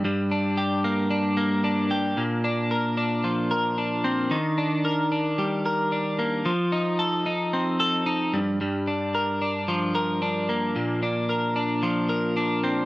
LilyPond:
\new Staff \with { instrumentName = "Clean electric guitar" } { \time 4/4 \key bes \major \tempo 4 = 112 g,8 d'8 g'8 bes8 d'8 bes8 d'8 g'8 | bes,8 d'8 bes'8 d'8 f8 bes'8 d'8 c'8 | ees8 d'8 bes'8 d'8 g8 bes'8 d'8 bes8 | f8 ees'8 a'8 ees'8 c'8 a'8 ees'8 g,8 |
g,8 d'8 bes'8 d'8 f8 bes'8 d'8 bes8 | bes,8 d'8 bes'8 d'8 f8 bes'8 d'8 c'8 | }